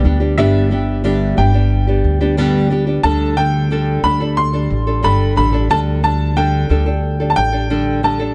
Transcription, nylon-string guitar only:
0.04 0.20 G3 medium
0.04 0.20 B3 medium
0.04 0.20 D4 medium
0.04 0.19 G4 medium
0.20 0.36 G3 medium
0.20 0.37 B3 soft
0.20 0.37 D4 medium
0.20 0.37 G4 medium
0.37 0.71 G2 medium
0.37 0.71 D3 medium
0.37 0.69 G3 medium
0.37 0.70 B3 medium
0.37 0.71 D4 medium
0.37 0.71 G4 loud
0.70 1.03 G3 medium
0.70 1.03 B3 medium
0.70 1.04 D4 medium
0.70 1.04 G4 medium
1.04 1.37 G2 medium
1.04 1.38 D3 medium
1.04 1.36 G3 medium
1.04 1.37 B3 medium
1.04 1.37 D4 medium
1.04 1.38 G4 medium
1.37 1.54 G3 medium
1.37 1.54 B3 medium
1.37 1.53 D4 medium
1.37 1.52 G4 medium
1.53 1.88 G3 soft
1.53 1.88 B3 soft
1.53 1.87 D4 medium
1.53 1.86 G4 medium
1.87 2.21 G3 soft
1.87 2.21 B3 soft
1.87 2.20 D4 soft
1.87 2.19 G4 soft
2.21 2.37 G3 medium
2.21 2.37 B3 medium
2.21 2.37 D4 medium
2.21 2.38 G4 medium
2.37 2.71 G2 medium
2.37 2.71 D3 medium
2.37 2.69 G3 medium
2.37 2.70 B3 medium
2.37 2.70 D4 medium
2.37 2.71 G4 loud
2.70 2.87 G3 medium
2.70 2.87 B3 medium
2.70 2.86 D4 medium
2.70 2.85 G4 medium
2.87 3.03 G3 soft
2.87 3.04 B3 soft
2.87 3.03 D4 medium
2.87 3.04 G4 medium
3.04 3.36 D3 medium
3.04 3.36 G3 medium
3.04 3.37 D4 medium
3.04 3.37 A4 loud
3.37 3.69 D3 medium
3.37 3.70 G3 medium
3.37 3.70 D4 medium
3.37 3.71 A4 medium
3.71 4.02 D3 medium
3.71 4.03 G3 medium
3.71 4.03 D4 medium
3.71 4.04 A4 medium
4.03 4.20 D3 medium
4.03 4.21 G3 medium
4.03 4.20 D4 medium
4.03 4.19 A4 medium
4.20 4.54 G3 soft
4.20 4.53 D4 medium
4.20 4.52 A4 medium
4.53 4.87 G3 soft
4.53 4.87 D4 medium
4.53 4.86 A4 medium
4.87 5.02 G3 soft
4.87 5.03 D4 medium
4.87 5.03 A4 medium
5.03 5.35 D3 medium
5.03 5.35 G3 medium
5.03 5.36 D4 medium
5.03 5.36 A4 loud
5.36 5.53 D3 medium
5.36 5.54 G3 medium
5.36 5.53 D4 medium
5.36 5.51 A4 medium
5.53 5.69 G3 soft
5.53 5.69 D4 medium
5.53 5.70 A4 medium
5.70 6.02 D3 medium
5.70 6.03 G3 medium
5.70 6.03 D4 medium
5.70 6.04 A4 loud
6.03 6.35 D3 medium
6.03 6.35 G3 medium
6.03 6.36 D4 medium
6.03 6.36 A4 medium
6.36 6.68 D3 medium
6.36 6.68 G3 medium
6.36 6.69 D4 medium
6.36 6.70 A4 medium
6.69 6.86 D3 medium
6.69 6.87 G3 medium
6.69 6.86 D4 medium
6.69 6.85 A4 medium
6.86 7.20 G3 soft
6.86 7.20 D4 medium
6.86 7.19 A4 medium
7.20 7.53 G3 soft
7.20 7.52 D4 medium
7.20 7.51 A4 medium
7.53 7.69 G3 medium
7.53 7.69 D4 medium
7.53 7.70 A4 medium
7.70 8.02 D3 medium
7.70 8.02 G3 medium
7.70 8.03 D4 medium
7.70 8.03 A4 medium
8.03 8.20 D3 medium
8.03 8.20 G3 medium
8.03 8.19 D4 medium
8.03 8.18 A4 medium
8.19 8.34 G3 medium
8.19 8.34 D4 medium
8.19 8.34 A4 medium

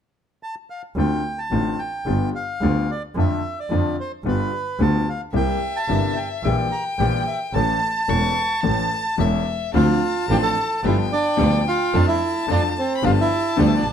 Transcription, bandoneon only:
0.43 0.55 A5 medium
0.70 0.82 F5 soft
0.99 1.40 G5 medium
1.39 1.80 A5 medium
1.79 2.30 G5 medium
2.35 2.91 F5 medium
2.91 3.03 D5 medium
3.19 3.60 E5 medium
3.60 3.97 D5 medium
4.00 4.12 C5 medium
4.28 4.83 B4 medium
4.82 5.09 A5 medium
5.09 5.21 F5 medium
5.36 5.78 G5 medium
5.76 6.19 A5 medium
6.16 6.29 G5 medium
6.44 6.56 E5 medium
6.72 6.84 A#5 medium
6.99 7.25 G5 medium
7.27 7.39 E5 medium
7.55 9.16 A5 medium
9.75 10.26 F4 medium
9.75 10.26 F5 medium
10.31 10.37 G4 medium
10.31 10.38 G5 medium
10.42 10.81 A4 medium
10.42 10.85 A5 medium
10.85 10.98 E4 medium
10.85 10.97 E5 medium
11.12 11.64 D4 medium
11.12 11.63 D5 medium
11.68 12.06 F4 medium
11.68 12.06 F5 medium
12.08 12.46 E4 medium
12.08 12.46 E5 medium
12.51 12.62 D4 medium
12.51 12.63 D5 medium
12.79 13.03 C4 medium
12.79 13.04 C5 medium
13.06 13.12 F4 medium
13.06 13.11 F5 medium
13.21 13.57 E4 medium
13.21 13.57 E5 medium
13.60 13.66 D4 medium
13.60 13.66 D5 medium
13.67 13.73 E5 medium
13.76 13.93 D4 medium
13.76 13.93 D5 medium

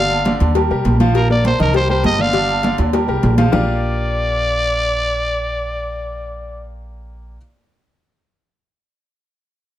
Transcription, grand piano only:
0.00 0.21 D3 medium
0.00 0.21 D4 medium
0.00 0.21 D5 medium
0.26 0.50 D3 medium
0.26 0.51 D4 medium
0.26 0.51 D5 medium
0.56 0.68 G3 medium
0.56 0.68 G4 medium
0.56 0.68 A#4 medium
0.71 0.95 G3 medium
0.71 0.95 G4 medium
0.71 0.95 A#4 medium
1.00 1.25 F3 loud
1.00 1.25 F4 medium
1.00 1.25 F5 medium
1.30 1.54 A#3 medium
1.30 1.55 A#4 medium
1.30 1.55 D5 medium
1.59 1.72 D#3 medium
1.59 1.72 D#4 medium
1.59 1.72 D#5 medium
1.74 1.87 G3 medium
1.74 1.87 G4 medium
1.74 1.87 A#4 medium
1.89 2.14 G3 medium
1.89 2.14 G4 medium
1.89 2.14 A#4 medium
2.19 2.31 D3 medium
2.19 2.31 D4 medium
2.19 2.32 D5 medium
2.34 2.58 D3 medium
2.34 2.58 D4 medium
2.34 2.59 D5 medium
2.64 2.88 D3 medium
2.64 2.88 D4 medium
2.64 2.88 D5 medium
2.93 3.06 G3 medium
2.93 3.06 G4 medium
2.93 3.06 A#4 medium
3.08 3.33 G3 medium
3.08 3.33 G4 medium
3.08 3.33 A#4 medium
3.38 3.50 F3 medium
3.38 3.50 F4 medium
3.38 3.51 F5 loud
3.52 7.36 A#3 medium
3.52 7.36 F4 medium
3.52 7.36 G4 medium
3.52 7.36 A#4 medium
3.52 7.36 D5 medium
3.52 7.36 F5 loud

